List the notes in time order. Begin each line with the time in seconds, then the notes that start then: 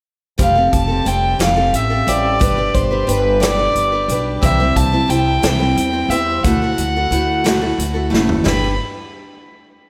0.38 F1 F3 G3 C4 G4 A4 F5, kick, closed hi-hat
0.55 C4 G4 A4
0.73 F1 A5, kick, closed hi-hat
0.88 C4 G4 A4
1.05 F1 G3 C4 G4 A4 G5, closed hi-hat
1.39 F1 F3 G3 C4 G4 A4 F5, snare, closed hi-hat
1.56 C4 G4 A4
1.73 A1 E5, closed hi-hat
1.90 C4 G4 A4
2.07 A1 G3 C4 G4 A4 D5, closed hi-hat
2.39 G1 G3 D4 G4 B4, kick, closed hi-hat
2.57 D4 G4 B4
2.74 G1 C5, kick, closed hi-hat
2.91 D4 G4 B4
3.07 G1 G3 D4 G4 B4, closed hi-hat
3.40 G3 D4 G4 B4 D5, snare, closed hi-hat
3.57 D4 G4 B4
3.75 G1, closed hi-hat
3.92 D4 G4 B4
4.08 B1 G3 D4 G4 B4, closed hi-hat
4.42 C2 C3 E3 G3 C4 E4 C5 E5, kick, closed hi-hat
4.60 G3 C4 E4 C5
4.76 C2 A5, kick, closed hi-hat
4.92 G3 C4 E4 C5
5.08 C2 G3 C4 E4 C5 G5, closed hi-hat
5.42 C2 C3 E3 G3 C4 E4 C5, snare, closed hi-hat
5.59 G3 C4 E4 C5
5.76 E2, closed hi-hat
5.92 G3 C4 E4 C5
6.09 E2 G3 C4 E4 C5 E5, closed hi-hat
6.43 D2 D3 A3 E4 F#4 A4 F#5, kick, closed hi-hat
6.62 E4 F#4 A4
6.78 D2, closed hi-hat
6.96 E4 F#4 A4
7.11 D2 A3 E4 F#4 A4, closed hi-hat
7.44 D3 A3 E4 F#4 A4, snare, closed hi-hat
7.61 E4 F#4 A4
7.78 D2, closed hi-hat
7.94 E4 F#4 A4
8.10 F#1 A3 E4 F#4 A4, snare
8.29 floor tom
8.44 G1 G3 D4 G4 B4 B5, snare, floor tom